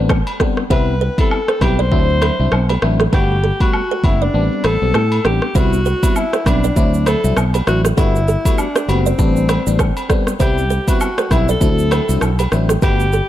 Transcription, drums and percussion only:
0.09 kick, cross-stick, low woodblock
0.27 high agogo
0.40 kick, cross-stick
0.57 cross-stick
0.70 kick, high agogo
1.18 kick, high agogo
1.31 low woodblock
1.48 cross-stick
1.61 kick, cross-stick, high agogo
1.92 kick
2.22 cross-stick, high agogo
2.52 cross-stick, low woodblock
2.69 high agogo
2.82 cross-stick
3.00 cross-stick
3.13 kick, high agogo
3.60 kick, high agogo
3.73 low woodblock
4.04 kick, high agogo
4.64 cross-stick, high agogo
4.94 cross-stick, low woodblock
5.12 high agogo
5.25 cross-stick
5.42 cross-stick
5.55 kick, high agogo, shaker
5.73 shaker
5.85 shaker
6.03 kick, high agogo, shaker
6.16 low woodblock, shaker
6.33 cross-stick, shaker
6.46 kick, cross-stick, high agogo, shaker
6.64 shaker
6.76 kick, shaker
6.94 shaker
7.06 cross-stick, high agogo, shaker
7.24 shaker
7.37 cross-stick, low woodblock, shaker
7.54 high agogo, shaker
7.67 cross-stick, shaker
7.85 cross-stick, shaker
7.98 kick, high agogo, shaker
8.16 shaker
8.28 shaker
8.45 kick, high agogo, shaker
8.58 low woodblock, shaker
8.76 cross-stick, shaker
8.89 high agogo, shaker
9.06 shaker
9.19 kick, shaker
9.36 shaker
9.49 cross-stick, high agogo, shaker
9.67 shaker
9.79 kick, cross-stick, low woodblock, shaker
9.97 high agogo, shaker
10.10 kick, cross-stick, shaker
10.27 cross-stick, shaker
10.40 kick, high agogo, shaker
10.58 shaker
10.70 shaker
10.88 kick, high agogo, shaker
11.01 low woodblock, shaker
11.18 cross-stick, shaker
11.31 kick, cross-stick, high agogo, shaker
11.49 shaker
11.61 kick, shaker
11.79 shaker
11.91 cross-stick, high agogo, shaker
12.09 shaker
12.21 cross-stick, low woodblock, shaker
12.39 high agogo, shaker
12.52 cross-stick, shaker
12.69 cross-stick, shaker
12.82 kick, high agogo, shaker
13.00 shaker
13.13 shaker

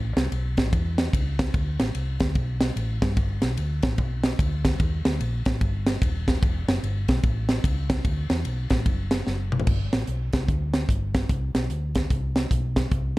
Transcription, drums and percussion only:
0.17 snare, ride bell
0.32 ride bell
0.57 kick, snare, ride bell
0.73 kick, ride bell
0.98 snare, ride bell
1.13 kick, ride bell
1.39 kick, snare, ride bell
1.54 kick, ride bell
1.80 snare, ride bell
1.95 ride bell
2.20 kick, snare, ride bell
2.35 kick, ride bell
2.61 snare, ride bell
2.77 ride bell
3.02 kick, snare, ride bell
3.17 kick, ride bell
3.42 snare, ride bell
3.57 ride bell
3.82 kick, snare, ride bell
3.98 kick, ride bell
4.24 snare, ride bell
4.39 kick, ride bell
4.65 kick, snare, ride bell
4.80 kick, ride bell
5.05 snare, ride bell
5.21 ride bell
5.45 kick, snare, ride bell
5.61 kick, ride bell
5.87 snare, ride bell
6.02 kick, ride bell
6.28 kick, snare, ride bell
6.43 kick, ride bell
6.68 snare, ride bell
6.84 ride bell
7.08 kick, snare, ride bell
7.23 kick, ride bell
7.49 snare, ride bell
7.64 kick, ride bell
7.90 kick, snare, ride bell
8.05 kick, ride bell
8.30 snare, ride bell
8.45 ride bell
8.70 kick, snare, ride bell
8.86 kick, ride bell
9.11 snare, ride bell
9.27 snare
9.52 mid tom
9.60 floor tom
9.67 kick, crash
9.93 snare, closed hi-hat
10.07 closed hi-hat
10.33 kick, snare, closed hi-hat
10.48 kick, closed hi-hat
10.74 snare, closed hi-hat
10.89 kick, closed hi-hat
11.15 kick, snare, closed hi-hat
11.29 kick, closed hi-hat
11.55 snare, closed hi-hat
11.70 closed hi-hat
11.95 kick, snare, closed hi-hat
12.10 kick, closed hi-hat
12.36 snare, closed hi-hat
12.51 kick, closed hi-hat
12.76 kick, snare, closed hi-hat
12.91 kick, closed hi-hat

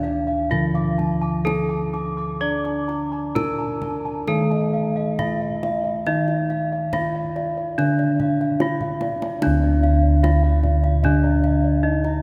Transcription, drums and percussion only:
0.04 kendang slap
0.52 kendang low
0.75 kendang slap
0.99 kendang low
1.47 kendang high
1.94 kendang slap
2.65 kendang slap
2.89 kendang slap
3.36 kendang slap, kendang high, kendang low
3.82 kendang slap, kendang low
4.27 kendang low
4.51 kendang slap
5.19 kendang high, kendang low
5.63 kendang slap, kendang high
6.06 kendang high
6.28 kendang slap
6.50 kendang slap
6.93 kendang slap, kendang high, kendang low
7.36 kendang slap
7.78 kendang low
7.99 kendang slap
8.20 kendang slap, kendang low
8.41 kendang slap
8.60 kendang slap, kendang high
8.81 kendang low
9.01 kendang high
9.22 kendang high
9.42 kendang high
9.84 kendang slap
10.24 kendang high
10.63 kendang slap, kendang low
10.84 kendang slap
11.04 kendang low
11.44 kendang slap
12.04 kendang slap

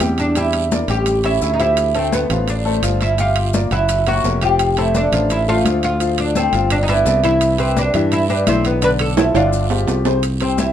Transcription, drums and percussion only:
0.00 high conga, high timbale, short guiro, maracas
0.18 high conga, high timbale, short guiro, maracas
0.35 high conga, high timbale, long guiro, maracas
0.53 high conga, high timbale, maracas
0.71 high conga, short guiro, maracas
0.88 high conga, high timbale, short guiro, maracas
1.06 high conga, high timbale, long guiro, maracas
1.24 high conga, high timbale, maracas
1.41 high conga, short guiro, maracas
1.60 high timbale, short guiro, maracas
1.77 high conga, high timbale, long guiro, maracas
1.95 high conga, high timbale, maracas
2.12 high conga, short guiro, maracas
2.30 high conga, low conga, high timbale, short guiro, maracas
2.48 high conga, high timbale, long guiro, maracas
2.66 high conga, maracas
2.83 high conga, high timbale, short guiro, maracas
3.01 high conga, high timbale, short guiro, maracas
3.18 high conga, high timbale, long guiro, maracas
3.36 high conga, high timbale, maracas
3.53 high conga, short guiro, maracas
3.71 high conga, high timbale, short guiro, maracas
3.89 high conga, high timbale, long guiro, maracas
4.06 high conga, high timbale, maracas
4.24 high conga, low timbale, short guiro, maracas
4.41 high timbale, short guiro, maracas
4.59 high conga, high timbale, long guiro, maracas
4.77 high conga, high timbale, maracas
4.95 high conga, short guiro, maracas
5.12 high conga, low conga, high timbale, short guiro, maracas
5.30 high conga, high timbale, long guiro, maracas
5.48 high conga, maracas
5.65 high conga, high timbale, short guiro, maracas
5.83 high conga, high timbale, short guiro, maracas
6.00 high conga, high timbale, long guiro, maracas
6.18 high conga, high timbale, maracas
6.35 high conga, short guiro, maracas
6.53 high conga, high timbale, short guiro, maracas
6.70 high conga, high timbale, long guiro, maracas
6.88 high conga, high timbale, maracas
7.06 high conga, low timbale, short guiro, maracas
7.24 high timbale, short guiro, maracas
7.41 high conga, high timbale, long guiro, maracas
7.58 high conga, high timbale, maracas
7.77 high conga, short guiro, maracas
7.94 high conga, low conga, high timbale, short guiro, maracas
8.12 high conga, high timbale, long guiro, maracas
8.29 high conga, maracas
8.47 high conga, high timbale, short guiro, maracas
8.64 high conga, high timbale, short guiro, maracas
8.82 high conga, high timbale, long guiro, maracas
8.99 high conga, high timbale, maracas
9.17 high conga, high timbale, short guiro, maracas
9.35 high timbale, short guiro, maracas
9.53 high conga, long guiro, maracas
9.70 high conga, low timbale, maracas
9.88 high conga, low timbale, short guiro, maracas
10.05 low timbale, short guiro, maracas
10.23 high conga, high timbale, long guiro, maracas
10.40 high conga, high timbale, maracas
10.58 high conga, short guiro, maracas

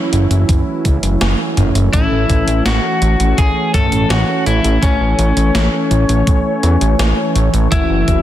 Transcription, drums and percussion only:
0.13 closed hi-hat
0.31 closed hi-hat
0.49 kick, closed hi-hat
0.85 kick, closed hi-hat
1.03 closed hi-hat
1.21 snare, closed hi-hat
1.57 closed hi-hat, mid tom
1.75 closed hi-hat
1.93 kick, closed hi-hat
2.30 kick, closed hi-hat
2.48 closed hi-hat
2.66 snare, closed hi-hat
3.02 closed hi-hat
3.20 closed hi-hat
3.38 kick, closed hi-hat
3.74 kick, closed hi-hat, mid tom
3.92 closed hi-hat
4.10 snare, closed hi-hat
4.46 closed hi-hat
4.64 closed hi-hat
4.83 kick, closed hi-hat
5.19 closed hi-hat
5.37 closed hi-hat
5.55 snare, closed hi-hat
5.91 closed hi-hat
6.09 closed hi-hat
6.27 kick, closed hi-hat
6.63 closed hi-hat
6.81 closed hi-hat
6.99 snare, closed hi-hat
7.36 closed hi-hat
7.54 closed hi-hat
7.72 kick, closed hi-hat
8.08 kick, closed hi-hat

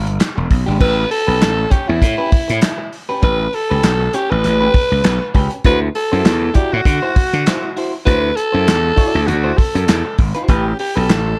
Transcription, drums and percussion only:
0.07 closed hi-hat
0.20 snare, clap, closed hi-hat
0.50 kick, open hi-hat
0.81 kick, crash
1.11 open hi-hat
1.41 snare, clap, closed hi-hat
1.71 kick, closed hi-hat
2.02 kick, closed hi-hat
2.32 kick, open hi-hat
2.49 closed hi-hat
2.61 snare, clap, closed hi-hat
2.93 open hi-hat
3.23 kick, closed hi-hat
3.53 open hi-hat
3.83 snare, clap, closed hi-hat
4.13 closed hi-hat
4.44 closed hi-hat
4.74 kick, open hi-hat
5.04 snare, clap, closed hi-hat
5.34 kick, open hi-hat
5.50 closed hi-hat
5.64 kick, closed hi-hat
5.95 open hi-hat
6.25 snare, clap, closed hi-hat
6.54 kick, closed hi-hat
6.85 kick, closed hi-hat
7.16 kick, open hi-hat
7.33 closed hi-hat
7.46 snare, clap, closed hi-hat
7.77 open hi-hat
8.07 kick, closed hi-hat
8.37 closed hi-hat
8.68 snare, clap, closed hi-hat
8.97 kick, open hi-hat
9.28 closed hi-hat
9.58 kick, open hi-hat
9.75 closed hi-hat
9.88 snare, clap, closed hi-hat
10.18 kick, open hi-hat
10.34 closed hi-hat
10.48 kick, closed hi-hat
10.79 open hi-hat
11.09 snare, clap, closed hi-hat

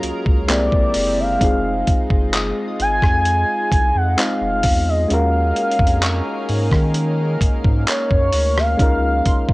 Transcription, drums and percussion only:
0.03 closed hi-hat
0.26 kick
0.49 clap, closed hi-hat
0.72 kick
0.94 open hi-hat
1.41 kick, closed hi-hat
1.87 kick, closed hi-hat
2.10 kick
2.34 clap, closed hi-hat
2.80 closed hi-hat
3.02 kick, cross-stick
3.25 closed hi-hat
3.72 kick, closed hi-hat
4.19 clap, closed hi-hat
4.63 kick, open hi-hat
5.10 closed hi-hat
5.56 closed hi-hat
5.72 closed hi-hat
5.79 kick
5.87 closed hi-hat
6.03 clap, closed hi-hat
6.49 open hi-hat
6.71 kick, cross-stick
6.94 closed hi-hat
7.41 kick, closed hi-hat
7.64 kick
7.88 clap, closed hi-hat
8.11 kick
8.32 open hi-hat
8.58 cross-stick
8.79 kick, closed hi-hat
9.26 kick, closed hi-hat
9.49 kick

